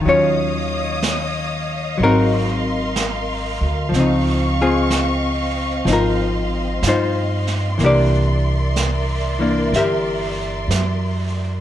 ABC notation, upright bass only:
X:1
M:4/4
L:1/8
Q:"Swing" 1/4=62
K:Db
V:1 name="Upright bass" clef=bass
E,,4 A,,,3 =D,, | D,,4 A,,,2 =G,,2 | C,,4 =G,,,2 _G,,2 |]